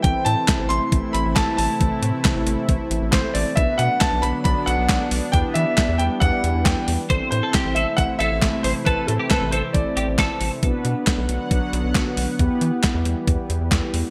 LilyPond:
<<
  \new Staff \with { instrumentName = "Grand piano" } { \time 4/4 \key a \dorian \tempo 4 = 136 g''8 a''4 c'''4 b''8 a''8 a''8~ | a''4. r4. c''8 d''8 | e''8 fis''8 a''8 b''8 b''8 fis''4 r8 | g''8 e''4 g''8 fis''4 g''8. r16 |
r8 c''4 e''8 fis''8 e''4 c''8 | b'8 a'8 b'8 c''8 d''4. r8 | r1 | r1 | }
  \new Staff \with { instrumentName = "Clean electric guitar" } { \time 4/4 \key a \dorian r1 | r1 | r1 | r1 |
c''8 r16 a'16 g'8 a'16 r8. a'16 r8. c''16 r16 | a'8 r16 g'16 a'8 a'16 r8. g'16 r16 a'8. r16 | r1 | r1 | }
  \new Staff \with { instrumentName = "Analog polysynth" } { \time 4/4 \key a \dorian <c' e' a'>1~ | <c' e' a'>1 | <b d' fis' b'>1 | <b e' g' b'>1 |
<c' e' a' c''>1~ | <c' e' a' c''>1 | <b d' fis' b'>1 | <b e' g' b'>1 | }
  \new Staff \with { instrumentName = "Analog synth pad" } { \clef bass \time 4/4 \key a \dorian << { <a e'>1~ | <a e'>1 | <b d'>1~ | <b d'>1 |
<a e'>1~ | <a e'>1 | <b fis''>1~ | <b fis''>1 | } \\ { <c e>1~ | <c e>1 | <d fis>1 | <e g>1 |
<c e>1~ | <c e>1 | <d fis>1 | <e g>1 | } >> }
  \new Staff \with { instrumentName = "Analog synth bass" } { \clef bass \time 4/4 \key a \dorian a,,16 r16 a,16 r8 a,,16 a,,16 r16 a,,16 r16 a,,16 a,,16 a,,16 r16 a,,16 r16 | a,,16 r16 a,16 r8 a,,16 a,,16 r16 a,,16 r16 a,,16 a,,16 a,,16 r16 a,,16 r16 | b,,16 r16 b,16 r8 b,,16 b,,16 r16 b,,16 r16 b,,16 b,,16 b,,16 r16 b,,16 r16 | e,16 r16 e16 r8 e,16 e,16 r16 e,16 r16 e,16 e,16 e,16 r16 e,16 r16 |
a,,16 r16 a,16 r8 a,,16 a,,16 r16 a,,16 r16 a,,16 a,,16 a,,16 r16 a,,16 r16 | a,,16 r16 a,16 r8 a,,16 a,,16 r16 a,,16 r16 a,,16 a,,16 a,,16 r16 a,,16 r16 | b,,16 r16 b,16 r8 b,,16 b,,16 r16 b,,16 r16 b,,16 b,,16 b,,16 r16 b,,16 r16 | e,16 r16 e16 r8 e,16 e,16 r16 e,16 r16 e,16 e,16 e,16 r16 e,16 r16 | }
  \new DrumStaff \with { instrumentName = "Drums" } \drummode { \time 4/4 <hh bd>8 hh8 <hc hh bd sn>8 hh8 <hh bd>8 hh8 <hc hh bd sn>8 hho8 | <hh bd>8 hh8 <hc hh bd sn>8 hh8 <hh bd>8 hh8 <hc hh bd sn>8 hho8 | <hh bd>8 hh8 <hc hh bd sn>8 hh8 <hh bd>8 hh8 <hc hh bd sn>8 hho8 | <hh bd>8 hh8 <hc hh bd sn>8 hh8 <hh bd>8 hh8 <hc hh bd sn>8 hho8 |
<hh bd>8 hh8 <hc hh bd sn>8 hh8 <hh bd>8 hh8 <hc hh bd sn>8 hho8 | <hh bd>8 hh8 <hc hh bd sn>8 hh8 <hh bd>8 hh8 <hc hh bd sn>8 hho8 | <hh bd>8 hh8 <hc hh bd sn>8 hh8 <hh bd>8 hh8 <hc hh bd sn>8 hho8 | <hh bd>8 hh8 <hc hh bd sn>8 hh8 <hh bd>8 hh8 <hc hh bd sn>8 hho8 | }
>>